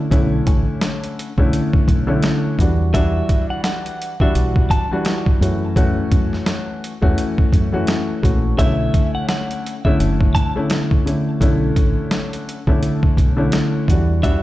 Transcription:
0.11 fingered electric bass B1, grand piano D3 A3 C#4 E4, kick, closed hi-hat
0.47 fingered electric bass A1, kick, closed hi-hat
0.81 snare, closed hi-hat
1.04 closed hi-hat
1.19 closed hi-hat
1.38 fingered electric bass B1, grand piano D3 A3 C#4 E4, kick
1.53 closed hi-hat
1.73 kick
1.88 fingered electric bass B1, kick, closed hi-hat
2.07 grand piano D3 A3 C#4 E4
2.23 snare, closed hi-hat
2.59 fingered electric bass E2, grand piano E3 G3 D4 F#4, kick, closed hi-hat
2.93 grand piano E3 G3 D4 F#4, clean electric guitar E5, kick, closed hi-hat
3.29 kick, closed hi-hat
3.50 clean electric guitar F#5
3.64 clean electric guitar F#5, snare, closed hi-hat
3.86 closed hi-hat
4.02 closed hi-hat
4.20 grand piano E3 G3 D4 F#4, clean electric guitar E5, kick
4.35 fingered electric bass B1, closed hi-hat
4.56 kick
4.70 clean electric guitar A5, kick, closed hi-hat
4.91 grand piano E3 G3 D4 F#4
5.05 snare, closed hi-hat
5.26 kick
5.41 fingered electric bass F#2, grand piano E3 A3 C#4 F#4, closed hi-hat
5.76 grand piano E3 A3 C#4 F#4, kick, closed hi-hat
6.12 fingered electric bass F#2, kick, closed hi-hat
6.33 snare
6.46 snare, closed hi-hat
6.84 closed hi-hat
7.01 fingered electric bass E2, grand piano E3 A3 C#4 F#4, kick
7.18 closed hi-hat
7.38 kick
7.53 fingered electric bass F#2, kick, closed hi-hat
7.72 grand piano E3 A3 C#4 F#4
7.87 snare, closed hi-hat
8.22 fingered electric bass A#1, grand piano E3 A3 C#4 F#4, kick, closed hi-hat
8.58 fingered electric bass B1, grand piano D3 A3 C#4 E4, clean electric guitar E5, kick, closed hi-hat
8.94 kick, closed hi-hat
9.15 clean electric guitar F#5
9.29 clean electric guitar F#5, snare, closed hi-hat
9.51 closed hi-hat
9.66 closed hi-hat
9.85 grand piano D3 A3 C#4 E4, clean electric guitar E5, kick
10.00 fingered electric bass F#1, closed hi-hat
10.21 kick
10.35 clean electric guitar A5, kick, closed hi-hat
10.56 grand piano D3 A3 C#4 E4
10.70 snare, closed hi-hat
10.91 kick
11.06 grand piano D3 A3 C#4 E4, closed hi-hat
11.41 fingered electric bass B1, grand piano D3 A3 C#4 E4, kick, closed hi-hat
11.76 fingered electric bass A1, kick, closed hi-hat
12.11 snare, closed hi-hat
12.33 closed hi-hat
12.49 closed hi-hat
12.67 fingered electric bass B1, grand piano D3 A3 C#4 E4, kick
12.83 closed hi-hat
13.03 kick
13.17 fingered electric bass B1, kick, closed hi-hat
13.37 grand piano D3 A3 C#4 E4
13.52 snare, closed hi-hat
13.88 fingered electric bass E2, grand piano E3 G3 D4 F#4, kick, closed hi-hat
14.22 grand piano E3 G3 D4 F#4, clean electric guitar E5, kick, closed hi-hat

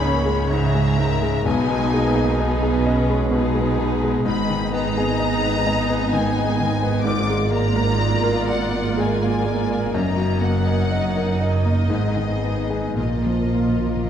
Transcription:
Already playing: double bass section C#2, grand piano C#2 G#2 G#3 G#4 C#5, cello section C#3, viola section A#3, violin section G#4 C#5 B5
0.01 viola section C#4, grand piano C#5
0.26 grand piano G#3
0.49 grand piano G#2, viola section G#3 C#4, violin section G#4 E5 A#5
0.74 grand piano G#3
0.98 grand piano G#2, violin section A#4
1.22 grand piano G#3
1.45 grand piano B1, double bass section B1, cello section B2, viola section G#3 D#4, violin section B4 D#5 G#5
1.69 grand piano B2
1.94 grand piano G#3, viola section A#3
2.16 grand piano G#4
2.39 viola section B3 D#4, violin section G#4 B4, grand piano D#5
2.63 grand piano G#4
2.87 viola section C#4, grand piano D#5
3.10 grand piano G#3
3.31 grand piano B2, violin section G#4 B4
3.35 viola section G#3 D#4
3.55 grand piano G#3
3.78 grand piano B2
4.03 grand piano G#3
4.25 double bass section G#1, grand piano G#2, cello section G#2, viola section B3 D#4, violin section G#4 D#5 B5
4.50 grand piano D#3
4.73 grand piano B3, violin section A#5
4.98 grand piano G#4
5.20 grand piano D#5
5.44 grand piano B4
5.67 grand piano D#5
5.90 grand piano B3
6.13 grand piano D#3, violin section G#5
6.37 grand piano B3
6.60 grand piano D#3
6.83 grand piano B3
7.04 grand piano G#2, viola section A#3 F4, violin section A#4 D5 D6
7.30 grand piano G#3
7.51 grand piano A#3, violin section A#5
7.76 grand piano A#4
7.99 grand piano D5
8.24 grand piano A#4
8.49 grand piano D5, violin section F#5
8.72 grand piano A#3
8.97 grand piano G#3, violin section G#5
9.22 grand piano A#3
9.45 grand piano G#3
9.70 grand piano A#3
9.94 double bass section F#1, cello section F#2, grand piano F#2, viola section D#4, violin section D#5 A#5
10.16 grand piano F#3
10.41 grand piano A#3, violin section F#5
10.68 grand piano A#4
10.91 grand piano D#5
11.17 grand piano A#4
11.40 violin section D#5, grand piano D#5
11.66 grand piano A#3
11.89 double bass section G#1, grand piano G#2, cello section G#2, viola section B3, violin section G#4
12.16 grand piano D#3
12.43 grand piano B3
12.70 grand piano G#4
12.96 double bass section A#1, grand piano A#2, timpani A#2, cello section A#2, viola section A#3 F4, violin section F4 A#4 D#5
13.07 timpani A#2
13.16 timpani A#2
13.25 timpani A#2, grand piano F3
13.34 timpani A#2
13.42 timpani A#2
13.51 timpani A#2
13.55 grand piano A#3
13.59 timpani A#2
13.69 timpani A#2
13.78 timpani A#2
13.83 timpani A#2, grand piano F4
13.96 timpani A#2
14.04 timpani A#2

